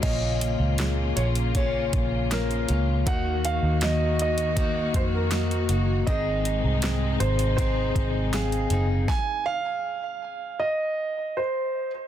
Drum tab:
CC |x---------------|----------------|----------------|----------------|
HH |x-x-x-xxx-x-xxx-|x-x-x-xxx-x-xxx-|x-x-x-xxx-x-xxx-|----------------|
SD |----o-------o---|----o-------o---|----o-------o---|o---------------|
BD |o-------o-o-----|o-------o-o-----|o-------o-o-----|o---------------|